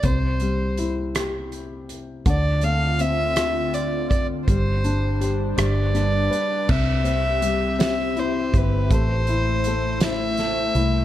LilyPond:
<<
  \new Staff \with { instrumentName = "Violin" } { \time 6/8 \key c \major \tempo 4. = 54 c''4 r2 | d''8 f''8 e''4 d''8 d''8 | c''4 r8 d''4. | e''4. e''8 c''8 b'8 |
c''4. e''4. | }
  \new Staff \with { instrumentName = "Analog synth pad" } { \time 6/8 \key c \major << { r2. | <d f'>2. | <g c''>4. <g b'>4. | <c' e''>2. |
<a c''>2. | } \\ { r2. | c'2. | d'2. | g'2. |
e'2. | } >> }
  \new Staff \with { instrumentName = "Felt piano" } { \time 6/8 \key c \major c8 g8 e'8 g'4. | d8 a8 c'8 f'4. | g8 d'8 g'8 g8 d'8 b'8 | c8 c'8 g8 c'8 e'8 c'8 |
a8 e'8 a8 e'8 a8 e'8 | }
  \new Staff \with { instrumentName = "Fingered electric bass" } { \clef bass \time 6/8 \key c \major c,2. | d,2. | g,,4. g,,4 r8 | c,2~ c,8 g,,8 |
a,,2~ a,,8 c,8 | }
  \new DrumStaff \with { instrumentName = "Drums" } \drummode { \time 6/8 <hh bd>8 hh8 hh8 <hh ss>8 hh8 hh8 | <hh bd>8 hh8 hh8 <hh ss>8 hh8 <hh bd>8 | <hh bd>8 hh8 hh8 <hh ss>8 <hh ss>8 hh8 | <cymc bd>8 hh8 hh8 <hh sn>8 hh8 <hh bd>8 |
<hh bd>8 hh8 hh8 <hh sn>8 <hh sn>8 hh8 | }
>>